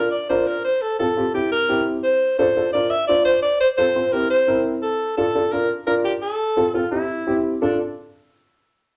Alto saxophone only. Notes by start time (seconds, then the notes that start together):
Already playing: A#4
0.11 D5
0.29 C5
0.47 A#4
0.64 C5
0.82 A4
0.99 A4
1.34 G4
1.52 A#4
2.03 C5
2.38 C5
2.73 D5
2.90 E5
3.07 D5
3.25 C5
3.42 D5
3.60 C5
3.77 C5
4.12 A#4
4.30 C5
4.82 A4
5.17 A4
5.52 A#4
5.87 A#4
6.05 G4
6.22 A4
6.74 F4
6.91 E4
7.62 D4